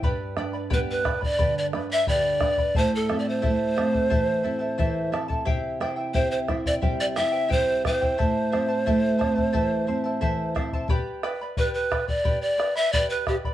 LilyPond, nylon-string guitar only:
\new Staff \with { instrumentName = "Nylon-string guitar" } { \time 4/4 \key g \mixolydian \tempo 4 = 88 g,8 d'8 b8 d'8 d8 d'8 d8 d'8 | a,8 c'8 a8 c'8 e8 c'8 e8 c'8 | c8 e'8 c'8 e'8 g8 e'8 g8 e'8 | a,8 c'8 a8 c'8 e8 c'8 e8 c'8 |
r1 | }